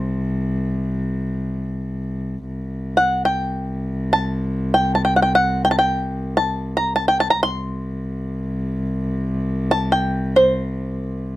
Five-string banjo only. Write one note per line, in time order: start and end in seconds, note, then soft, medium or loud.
0.00 1.27 C5 medium
2.97 3.23 F#5 medium
3.25 4.12 G5 medium
4.13 4.74 A5 medium
4.74 4.95 G5 medium
4.95 5.04 A5 medium
5.05 5.14 G5 medium
5.16 5.22 F#5 medium
5.22 5.32 G5 medium
5.35 5.62 F#5 medium
5.65 5.71 G5 medium
5.71 5.77 A5 medium
5.79 6.37 G5 medium
6.37 6.76 A5 medium
6.77 6.93 A#5 medium
6.96 7.07 A5 medium
7.08 7.18 G5 medium
7.20 7.30 A5 medium
7.30 7.41 A#5 medium
7.43 8.77 C6 medium
9.71 9.92 A5 medium
9.92 10.31 G5 medium
10.36 11.36 C5 medium